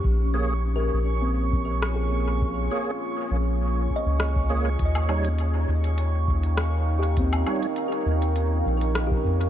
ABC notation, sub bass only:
X:1
M:4/4
L:1/16
Q:"Swing 16ths" 1/4=101
K:Bbdor
V:1 name="Sub bass" clef=bass
B,,,6 B,,,8- B,,,2- | B,,,2 z4 B,,,4 z D,,4- D,, | E,,6 E,,8- E,,2- | E,,2 z4 E,,4 B,,,4 F,,2 |]